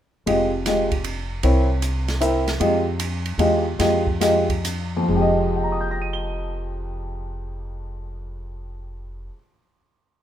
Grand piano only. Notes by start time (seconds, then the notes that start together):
0.26 G#3 F4 G4 D#5
0.67 G#3 F4 G4 D#5
1.44 C4 E4 A#4 C#5
2.21 C4 E4 A#4 E5
2.60 G#3 F4 G4 D#5
3.39 G#3 F4 G4 D#5
3.79 G#3 F4 G4 D#5
4.20 G#3 F4 G4 D#5
4.97 F2
5.03 F3
5.09 G#3
5.15 G4
5.21 D#5
5.56 G5
5.63 A#5
5.72 D#6
5.81 G6
5.91 A#6
6.02 D#7
6.13 G7